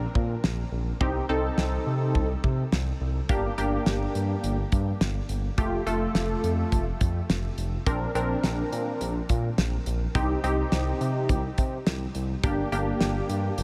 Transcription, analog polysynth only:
1.01 1.25 C4 medium
1.01 1.25 D#4 medium
1.01 1.25 G4 loud
1.29 2.28 C4 medium
1.29 2.28 D#4 medium
1.29 2.28 A4 medium
3.29 3.54 A#3 medium
3.29 3.54 D4 medium
3.29 3.54 G4 medium
3.58 4.57 A#3 medium
3.58 4.57 D4 medium
3.58 4.57 G4 medium
5.58 5.83 A3 medium
5.58 5.83 F4 medium
5.58 5.83 G4 loud
5.86 6.85 A3 medium
5.86 6.85 F4 medium
5.86 6.85 A4 medium
7.86 8.11 C4 medium
7.86 8.11 D4 medium
7.86 8.11 A#4 loud
8.15 9.14 C4 medium
8.15 9.14 D4 medium
8.15 9.14 A#4 medium
10.15 10.40 C4 medium
10.15 10.40 D#4 medium
10.15 10.40 G4 medium
10.44 11.42 C4 medium
10.44 11.42 D#4 medium
10.44 11.42 G4 medium
12.44 12.68 A#3 medium
12.44 12.68 D4 medium
12.44 12.68 G4 loud
12.72 13.63 A#3 medium
12.72 13.63 D4 medium
12.72 13.63 G4 medium

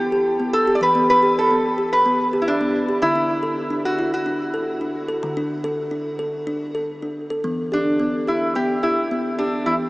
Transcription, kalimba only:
0.00 0.76 E3 medium
0.00 0.12 B3 medium
0.12 0.39 G4 medium
0.40 0.67 B3 medium
0.67 0.95 G4 medium
0.81 2.98 E3 medium
0.95 1.22 B3 medium
1.23 1.50 G4 medium
1.51 1.78 B3 medium
1.78 2.05 G4 medium
2.06 2.33 B3 medium
2.33 2.61 G4 medium
2.61 2.88 B3 medium
2.89 3.02 G4 medium
3.02 5.19 D3 medium
3.16 3.43 D4 medium
3.43 3.71 A4 medium
3.70 3.98 D4 medium
3.99 4.26 E4 medium
4.26 4.54 D4 medium
4.54 4.82 A4 medium
4.81 5.09 D4 medium
5.09 5.37 A4 medium
5.23 7.41 D3 medium
5.37 5.65 D4 medium
5.64 5.92 A4 medium
5.91 6.19 D4 medium
6.19 6.47 A4 medium
6.47 6.75 D4 medium
6.75 7.03 A4 medium
7.02 7.30 D4 medium
7.30 7.44 A4 medium
7.44 9.63 E3 medium
7.44 7.72 B3 medium
7.72 8.00 G4 medium
8.00 8.28 B3 medium
8.28 8.55 G4 medium
8.56 8.83 B3 medium
8.83 9.11 G4 medium
9.11 9.39 B3 medium
9.39 9.67 G4 medium
9.66 9.89 E3 medium
9.66 9.89 B3 medium

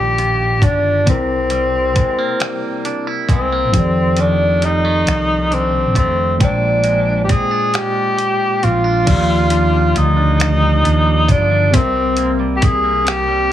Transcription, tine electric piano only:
0.00 1.02 D#3 medium
0.00 1.04 F4 soft
0.00 1.05 G4 medium
0.00 1.03 D5 soft
1.05 3.68 C3 medium
1.05 3.70 C4 medium
1.09 3.71 E4 medium
1.09 3.72 A#4 medium
3.72 6.36 D#3 medium
3.72 6.35 F3 medium
3.72 6.37 G4 medium
3.77 6.38 A4 soft
3.77 6.39 D5 medium
6.38 9.02 A#2 medium
6.38 9.03 G#3 medium
6.38 9.03 G5 soft
6.43 9.04 C5 soft
6.43 9.05 D5 medium
9.05 11.68 F3 medium
9.05 11.69 D5 medium
9.09 11.71 F4 medium
9.09 11.72 G4 medium
11.71 13.53 C3 medium
11.71 13.53 C4 medium
11.75 13.53 A#4 medium
11.75 13.53 E5 medium

